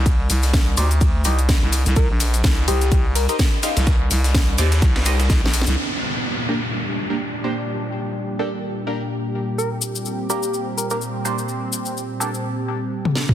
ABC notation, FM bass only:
X:1
M:4/4
L:1/16
Q:"Swing 16ths" 1/4=126
K:Gm
V:1 name="FM bass" clef=bass
C,,2 C,,4 D,,4 C,,3 C,,2 C,, | C,, B,,,3 C,,2 C,,2 C,,3 z4 C,,- | C,,2 C,,4 E,,2 C,,4 C,, B,,,2 C,, | z16 |
z16 | z16 | z16 |]